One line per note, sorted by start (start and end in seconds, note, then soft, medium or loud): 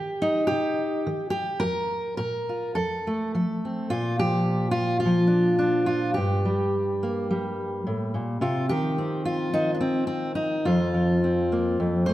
0.00 0.45 D#3 medium
0.00 0.46 G4 loud
0.22 1.07 D#4 medium
0.47 1.29 G4 loud
0.51 1.02 C3 medium
1.07 1.58 D#3 medium
1.30 1.61 G4 loud
1.60 2.14 F2 medium
1.60 2.16 A#4 loud
2.17 2.71 A#2 medium
2.17 2.75 A#4 medium
2.49 2.74 F4 soft
2.75 3.28 F2 medium
2.75 3.34 A4 medium
3.07 3.89 A3 soft
3.35 3.86 F3 medium
3.35 3.89 A4 soft
3.65 3.93 C4 soft
3.90 6.18 A#2 medium
3.90 4.19 F4 medium
4.19 5.04 F3 medium
4.19 4.71 G4 loud
4.71 4.99 F4 loud
5.00 5.85 F4 medium
5.05 6.15 F3 medium
5.27 5.57 D4 medium
5.59 6.17 D4 medium
5.86 6.14 F4 medium
6.14 7.86 G2 medium
6.14 8.41 G4 medium
6.45 7.30 G3 medium
7.03 8.40 A#3 soft
7.31 8.40 G3 medium
7.87 8.15 A2 medium
8.14 8.41 A#2 medium
8.41 8.70 C3 medium
8.41 8.69 F4 medium
8.69 9.52 D#3 medium
8.69 9.25 G4 medium
8.98 9.79 C4 soft
9.25 10.10 F4 medium
9.53 10.66 D#3 medium
9.53 9.74 D#4 medium
9.75 9.80 D4 medium
9.81 10.06 C4 medium
10.07 10.35 C4 medium
10.35 10.65 D#4 medium
10.65 11.79 F2 medium
10.65 12.06 F4 medium
10.94 12.08 F3 medium
11.24 12.13 C4 soft
11.52 11.77 A#3 soft
11.80 12.13 F2 medium
12.06 12.13 A3 medium
12.06 12.13 C5 medium